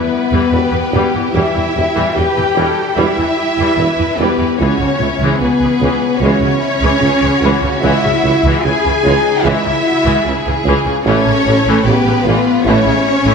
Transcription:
Already playing: cello section B3, french horn section B3, violin section E4 B4
0.32 double bass section E2, viola section E3 G3
0.51 tuba E1, double bass section E2, viola section E3, violin section G4
0.72 double bass section E2, viola section E3
0.91 tuba E1, double bass section E2, viola section E3 G3
1.14 double bass section E2, viola section E3
1.32 tuba E1, double bass section E2, trombone section E3 G3, viola section E3 G3, french horn section E4, cello section E4, violin section E5
1.55 double bass section E2, viola section E3
1.75 tuba E1, double bass section E2, viola section E3
1.95 double bass section E2, viola section E3 G3
2.14 tuba E1, double bass section E2, viola section E3, french horn section G4, cello section G4, violin section B4 G5
2.36 double bass section E2, viola section E3
2.55 tuba E1, double bass section E2, viola section E3 G3, violin section A4
2.96 tuba E1, double bass section E2, viola section E3 G3, trombone section E3 G3, cello section E4, french horn section E4, violin section G4 E5
3.17 double bass section E2, viola section E3
3.57 double bass section E2, viola section E3 G3
3.76 tuba E1, double bass section E2, viola section E3, violin section B4
3.98 double bass section E2, viola section E3
4.17 tuba E1, double bass section E2, viola section E3 G3, cello section B3, french horn section B3, violin section G4 B4
4.38 double bass section E2, viola section E3
4.57 double bass section C#2, tuba C#2, trombone section E3 G#3, viola section E3 G#3, cello section C#4, french horn section C#4, violin section F#4 C#5
4.79 double bass section C#2, viola section C#3
4.98 tuba C#2, double bass section C#2, viola section C#3 E3, violin section E4
5.19 double bass section C#2, viola section E3 G#3
5.37 tuba C#2, cello section B3, french horn section B3, violin section G#4 B4
5.41 double bass section C#2, viola section C#3
5.60 double bass section C#2
5.64 viola section C#3 E3
5.80 tuba C#2, double bass section C#2, viola section E3 G#3
6.17 double bass section C#2, tuba C#2, trombone section E3 G#3, cello section C#4, french horn section C#4, violin section F#4 C#5
6.23 viola section E3 G#3
6.40 double bass section C#2
6.44 viola section C#3
6.59 violin section E4
6.81 double bass section C#2, viola section E3 G#3
6.99 tuba C#2, double bass section C#2, violin section G#4
7.03 viola section C#3
7.22 double bass section C#2, viola section C#3 E3
7.39 tuba C#2, double bass section C#2, violin section F#4
7.44 viola section E3 G#3
7.62 double bass section C#2, viola section C#3
7.81 tuba C#2, double bass section C#2, trombone section E3 G#3, viola section E3 G#3, cello section E4, french horn section E4, violin section E5
8.03 double bass section C#2, viola section C#3
8.23 double bass section C#2, tuba C#2, viola section C#3 E3
8.43 double bass section C#2, viola section E3 G#3
8.62 tuba C#2, double bass section C#2, viola section C#3, violin section E4 G#5, cello section G#4, french horn section G#4
8.85 double bass section C#2, viola section C#3 E3
9.04 tuba C#2, double bass section C#2, viola section E3 G#3, violin section D#4
9.43 tuba C#2, double bass section C#2, trombone section E3 G#3, viola section E3 G#3, cello section E4, violin section E4 E5, french horn section E4
9.64 double bass section C#2, viola section C#3
9.84 violin section F#4
10.05 double bass section C#2, viola section E3 G#3
10.25 tuba C#2, double bass section C#2, viola section C#3, violin section G#4
10.46 double bass section C#2, viola section C#3 E3
10.64 tuba C#2, double bass section C#2, viola section E3 G#3
10.86 double bass section C#2, viola section C#3
11.04 tuba A1, double bass section A1, trombone section E3 A3, viola section E3 A3, cello section C#4, french horn section C#4, violin section A4 C#5
11.25 double bass section A1, viola section C#3
11.45 tuba A1, double bass section A1, viola section C#3 E3
11.65 double bass section A1, viola section E3 A3
11.84 double bass section A1, tuba A1, cello section B3, french horn section B3, violin section G4 B4
11.89 viola section C#3
12.05 double bass section A1, viola section C#3 E3
12.25 tuba A1, double bass section A1, viola section E3 A3, violin section F4
12.63 tuba A1, double bass section A1, trombone section E3 A3, viola section A3, cello section C#4, french horn section C#4, violin section E4 C#5
12.68 viola section E3
12.85 double bass section A1, viola section C#3
13.06 violin section C#4
13.25 double bass section A1, viola section E3 A3

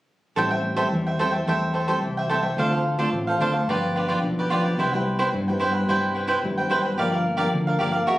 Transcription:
0.36 fingered electric bass A1, nylon-string guitar A2 G3 C4 E4, cavaquinho A4 C5 E5 G5
0.51 cavaquinho C5 E5 G5
0.76 nylon-string guitar G3 C4 E4, cavaquinho A4 C5 E5 G5
0.92 fingered electric bass E2, nylon-string guitar E3
1.06 cavaquinho C5 E5 G5
1.19 fingered electric bass E2, nylon-string guitar G3 C4 E4, cavaquinho A4 C5 E5 G5
1.32 cavaquinho C5 E5 G5
1.47 fingered electric bass E2, nylon-string guitar A2 G3 C4 E4, cavaquinho A4 C5 E5 G5
1.74 cavaquinho A4 C5 E5 G5
1.87 nylon-string guitar G3 C4 E4, cavaquinho A4 C5 E5 G5
2.02 fingered electric bass C2, nylon-string guitar E3
2.17 cavaquinho C5 E5 G5
2.29 nylon-string guitar G3 C4 E4, cavaquinho A4 C5 E5 G5
2.43 cavaquinho C5 E5 G5
2.57 fingered electric bass D2, nylon-string guitar D3 A3 C4 F4, cavaquinho D4 A4 C5 F5
2.73 cavaquinho A4 C5 F5
2.97 nylon-string guitar A3 C4 F4, cavaquinho D4 A4 C5 F5
3.12 fingered electric bass A1, nylon-string guitar A2
3.27 cavaquinho A4 C5 F5
3.39 fingered electric bass D2, nylon-string guitar A3 C4 F4, cavaquinho D4 A4 C5 F5
3.53 cavaquinho A4 C5 F5
3.67 fingered electric bass G1, nylon-string guitar G2 F3 B3 D4, cavaquinho F4 G4 B4 D5
3.95 cavaquinho F4 G4 B4 D5
4.08 nylon-string guitar F3 B3 D4, cavaquinho F4 G4 B4 D5
4.23 fingered electric bass B1, nylon-string guitar D3
4.39 cavaquinho G4 B4 D5
4.50 nylon-string guitar F3 B3 D4, cavaquinho F4 G4 B4 D5
4.63 cavaquinho G4 B4 D5
4.78 fingered electric bass C2, nylon-string guitar C3 G3 B3 E4, cavaquinho E4 B4 C5 G5
4.93 nylon-string guitar G3 B3 E4, cavaquinho B4 C5 G5
5.19 cavaquinho E4 B4 C5 G5
5.33 fingered electric bass G2, nylon-string guitar G2
5.48 nylon-string guitar G3 B3 E4, cavaquinho B4 C5 G5
5.59 fingered electric bass G2, cavaquinho E4 B4 C5 G5
5.73 cavaquinho B4 C5 G5
5.89 fingered electric bass G2, nylon-string guitar C3 G3 B3 E4, cavaquinho E4 B4 C5 G5
6.15 cavaquinho E4 B4 C5 G5
6.27 cavaquinho E4 B4 C5 G5
6.43 fingered electric bass G#1, nylon-string guitar G2 G3 B3 E4
6.58 cavaquinho B4 C5 G5
6.70 nylon-string guitar G3 B3 E4, cavaquinho E4 B4 C5 G5
6.82 cavaquinho B4 C5 G5
6.98 fingered electric bass G1, nylon-string guitar G2 F3 A#3 D4, cavaquinho G4 A#4 D5 F5
7.12 cavaquinho A#4 D5 F5
7.37 nylon-string guitar F3 A#3 D4, cavaquinho G4 A#4 D5 F5
7.53 fingered electric bass D2, nylon-string guitar D3
7.67 cavaquinho A#4 D5 F5
7.79 fingered electric bass G1, nylon-string guitar F3 A#3 D4, cavaquinho G4 A#4 D5 F5
7.92 cavaquinho A#4 D5 F5
8.07 nylon-string guitar F#3 A#3 E4 G#4, cavaquinho F#4 A#4 C#5 E5

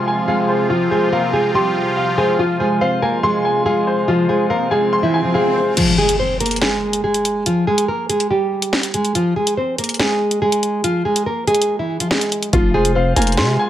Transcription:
Already playing: analog synth pad C3 F3 C4 F4, nylon-string guitar G#3 G#4, grand piano F4 C5 F5 G#5 C6
0.07 grand piano G#5
0.28 nylon-string guitar G#3 G#4, grand piano F5
0.49 grand piano C5
0.70 nylon-string guitar F3 F4, grand piano F4
0.91 nylon-string guitar G#3 G#4, grand piano C5
1.12 nylon-string guitar A#3 A#4, grand piano F5
1.33 nylon-string guitar G#3 G#4
1.54 nylon-string guitar G3 G4, grand piano C6
1.97 grand piano F5
2.18 nylon-string guitar G#3 G#4, grand piano C5
2.39 nylon-string guitar F3 F4, analog synth pad G#3, grand piano F4
2.60 nylon-string guitar G#3 G#4, grand piano C5
2.81 nylon-string guitar C4 C5, grand piano F5
3.02 nylon-string guitar A#3 A#4, grand piano G#5
3.23 nylon-string guitar G#3 G#4, grand piano C6
3.45 grand piano G#5
3.66 nylon-string guitar G#3 G#4, grand piano F5
3.87 grand piano C5
4.08 nylon-string guitar F3 F4, grand piano F4, swell
4.29 nylon-string guitar G#3 G#4, grand piano C5
4.50 nylon-string guitar A#3 A#4, grand piano F5
4.71 nylon-string guitar G#3 G#4, grand piano G#5
4.93 grand piano C6
5.03 nylon-string guitar E3 E4
5.14 grand piano G#5
5.24 nylon-string guitar F3 F4
5.34 nylon-string guitar G#3 G#4, grand piano F5
5.56 grand piano C5
5.77 nylon-string guitar F3 F4, closed hi-hat, crash, impact
5.98 nylon-string guitar G#3 G#4
6.09 closed hi-hat
6.19 nylon-string guitar C4 C5
6.40 nylon-string guitar A#3 A#4, closed hi-hat
6.46 closed hi-hat
6.51 closed hi-hat
6.56 closed hi-hat
6.62 nylon-string guitar G#3 G#4, snare
6.93 closed hi-hat
7.04 nylon-string guitar G#3 G#4
7.14 closed hi-hat
7.25 closed hi-hat
7.46 nylon-string guitar F3 F4, closed hi-hat
7.67 nylon-string guitar G#3 G#4
7.78 closed hi-hat
7.88 nylon-string guitar A#3 A#4
8.09 nylon-string guitar G#3 G#4, closed hi-hat
8.20 closed hi-hat
8.31 nylon-string guitar G3 G4
8.62 closed hi-hat
8.73 snare
8.83 closed hi-hat
8.94 nylon-string guitar G#3 G#4, closed hi-hat
9.05 closed hi-hat
9.15 nylon-string guitar F3 F4, closed hi-hat
9.36 nylon-string guitar G#3 G#4
9.47 closed hi-hat
9.57 nylon-string guitar C4 C5
9.78 nylon-string guitar A#3 A#4, closed hi-hat
9.84 closed hi-hat
9.89 closed hi-hat
9.94 closed hi-hat
9.99 nylon-string guitar G#3 G#4, snare
10.31 closed hi-hat
10.42 nylon-string guitar G#3 G#4
10.52 closed hi-hat
10.63 closed hi-hat
10.84 nylon-string guitar F3 F4, closed hi-hat
11.05 nylon-string guitar G#3 G#4
11.16 closed hi-hat
11.26 nylon-string guitar A#3 A#4
11.47 nylon-string guitar G#3 G#4, closed hi-hat
11.55 closed hi-hat
11.62 closed hi-hat
11.79 nylon-string guitar E3 E4
12.00 nylon-string guitar F3 F4, closed hi-hat
12.11 nylon-string guitar G#3 G#4, snare
12.21 closed hi-hat
12.32 closed hi-hat
12.43 closed hi-hat
12.53 808-style bass F1, nylon-string guitar F3 F4, grand piano F4, kick, closed hi-hat
12.74 nylon-string guitar G#3 G#4, grand piano C5
12.85 closed hi-hat
12.95 nylon-string guitar C4 C5, grand piano F5
13.16 808-style bass F1, nylon-string guitar A#3 A#4, grand piano G#5, closed hi-hat
13.22 closed hi-hat
13.27 closed hi-hat
13.32 closed hi-hat
13.37 808-style bass C3, nylon-string guitar G#3 G#4, grand piano C6, snare
13.59 grand piano G#5

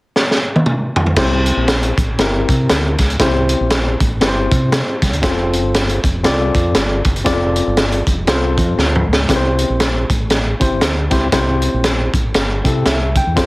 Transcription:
0.16 snare
0.31 snare
0.56 high tom
0.66 mid tom
0.96 floor tom
1.06 floor tom
1.16 fingered electric bass C2, tine electric piano C4 E4 G4 C5, kick, snare, crash
1.46 closed hi-hat
1.57 fingered electric bass A#1
1.68 snare, closed hi-hat
1.83 closed hi-hat
1.97 fingered electric bass A1, kick, closed hi-hat
2.18 fingered electric bass G1, tine electric piano C4 E4 G4 A#4, snare, closed hi-hat
2.49 fingered electric bass C3, kick, closed hi-hat
2.70 fingered electric bass D2, snare, closed hi-hat
2.98 fingered electric bass C#2, kick, snare, closed hi-hat
3.10 closed hi-hat
3.19 fingered electric bass C2, tine electric piano C4 E4 G4 C5, kick, snare, closed hi-hat
3.49 closed hi-hat
3.60 fingered electric bass A#1
3.70 snare, closed hi-hat
4.00 fingered electric bass A1, kick, closed hi-hat
4.21 fingered electric bass G1, tine electric piano C4 E4 G4 B4, snare, closed hi-hat
4.28 tine electric piano C5
4.51 fingered electric bass C3, kick, closed hi-hat
4.72 snare, closed hi-hat
5.02 fingered electric bass C2, kick, snare, closed hi-hat
5.13 fingered electric bass D2, closed hi-hat
5.22 fingered electric bass F1, tine electric piano C4 F4 A4 C5, kick, snare, closed hi-hat
5.53 closed hi-hat
5.64 fingered electric bass G1
5.74 snare, closed hi-hat
5.89 closed hi-hat
6.04 fingered electric bass F1, kick, closed hi-hat
6.24 fingered electric bass C2, tine electric piano C4 F4 A4 D5, snare, closed hi-hat
6.55 fingered electric bass F2, kick, closed hi-hat
6.75 fingered electric bass G1, snare, closed hi-hat
7.04 fingered electric bass F#1, kick, closed hi-hat
7.16 closed hi-hat
7.24 fingered electric bass F1, tine electric piano C4 F4 A4 D5, kick, snare, closed hi-hat
7.56 closed hi-hat
7.67 fingered electric bass G1
7.77 snare, closed hi-hat
7.92 closed hi-hat
8.07 fingered electric bass F1, kick, closed hi-hat
8.27 fingered electric bass C2, tine electric piano C4 F4 G#4 C5, snare, closed hi-hat
8.34 tine electric piano A4
8.58 fingered electric bass F2, kick, closed hi-hat
8.78 fingered electric bass D2, snare
8.95 mid tom
9.08 fingered electric bass C#2
9.13 snare
9.28 fingered electric bass C2, tine electric piano C4 E4 G4 B4, kick, snare, closed hi-hat
9.36 tine electric piano C5
9.58 closed hi-hat
9.70 fingered electric bass A#1
9.80 snare, closed hi-hat
10.10 fingered electric bass A1, kick, closed hi-hat
10.30 snare, closed hi-hat
10.60 fingered electric bass G1, tine electric piano C4 E4 G4 C5, kick, closed hi-hat
10.81 fingered electric bass D2, snare, closed hi-hat
11.11 fingered electric bass C#2, tine electric piano C4 E4 G4 C5, kick, snare, closed hi-hat
11.32 fingered electric bass C2, tine electric piano C4 E4 G4 C5, kick, snare, closed hi-hat
11.62 closed hi-hat
11.74 fingered electric bass A#1
11.84 snare, closed hi-hat
12.13 fingered electric bass A1, kick, closed hi-hat
12.34 fingered electric bass G1, snare, closed hi-hat
12.64 fingered electric bass C3, tine electric piano C4 E4 G4 A4, kick, closed hi-hat
12.86 fingered electric bass C2, tine electric piano E5, snare, closed hi-hat
13.15 tine electric piano G5, kick, closed hi-hat
13.27 fingered electric bass E2
13.36 fingered electric bass F1, tine electric piano C4 F4 A4 C5, kick, snare, closed hi-hat

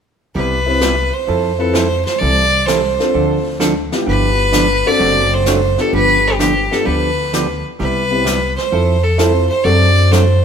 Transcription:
0.35 upright bass C2, hollow-body jazz guitar C3 G3 B3 E4 G4, fiddle B4, brush sweep
0.66 upright piano C4 E4 G4 B4
0.81 hollow-body jazz guitar C3 G3 B3 E4 G4, snare, hi-hat pedal
1.13 fiddle C5
1.27 upright bass F2, hollow-body jazz guitar F3 C4 E4 A4, brush sweep
1.59 upright piano C4 E4 F4 B4, fiddle A4
1.73 hollow-body jazz guitar F3 C4 E4 A4, fiddle C5, snare, hi-hat pedal
2.05 fiddle C5, snare
2.19 upright bass C2, hollow-body jazz guitar C3 E3 G3 C4 E4 A4, fiddle D5, brush sweep
2.66 hollow-body jazz guitar C3 E3 G3 C4 E4 A4, fiddle C5, snare, hi-hat pedal
2.99 upright piano C4 D4 F4 A4, snare
3.14 upright bass D2, hollow-body jazz guitar D3 F3 C4 D4 A4, brush sweep
3.60 hollow-body jazz guitar D3 F3 C4 D4 A4, snare, hi-hat pedal
3.92 upright piano B3 E4 F4 G4, snare
4.06 upright bass G1, hollow-body jazz guitar D3 F3 B3 D4 G4, fiddle B4, brush sweep
4.52 hollow-body jazz guitar D3 F3 B3 D4 G4, snare, hi-hat pedal
4.86 upright piano C4 D4 F#4 A4, fiddle D5
4.99 upright bass F#1, hollow-body jazz guitar C3 F#3 A3 D4 F#4, brush sweep
5.34 fiddle C5
5.46 hollow-body jazz guitar C3 F#3 A3 D4 F#4, snare, hi-hat pedal
5.78 upright piano B3 D4 F4 G4, fiddle A4, snare
5.93 upright bass G1, hollow-body jazz guitar D3 F3 B3 D4 G4, fiddle B4, brush sweep
6.27 fiddle G4
6.39 hollow-body jazz guitar D3 F3 B3 D4 G4, fiddle G4, snare, hi-hat pedal
6.71 upright piano B3 D4 F4 G4, fiddle A4, snare
6.85 upright bass D2, hollow-body jazz guitar D3 F3 B3 D4 G4, fiddle B4, brush sweep
7.33 hollow-body jazz guitar D3 F3 B3 D4 G4, snare, hi-hat pedal
7.79 upright bass C2, hollow-body jazz guitar C3 G3 B3 E4 G4, fiddle B4, brush sweep
8.11 upright piano B3 C4 E4 G4
8.24 hollow-body jazz guitar C3 G3 B3 E4 G4, snare, hi-hat pedal
8.56 fiddle C5, snare
8.72 upright bass F2, hollow-body jazz guitar F3 C4 E4 A4, brush sweep
9.03 fiddle A4
9.18 hollow-body jazz guitar F3 C4 E4 A4, upright piano C4 E4 F4 A4, fiddle C5, snare, hi-hat pedal
9.49 fiddle C5
9.64 upright bass F#2, hollow-body jazz guitar C3 F#3 A3 D4 F#4, upright piano C4 D4 F#4 A4, fiddle D5, brush sweep
10.11 hollow-body jazz guitar C3 F#3 A3 D4 F#4, fiddle C5, snare, hi-hat pedal

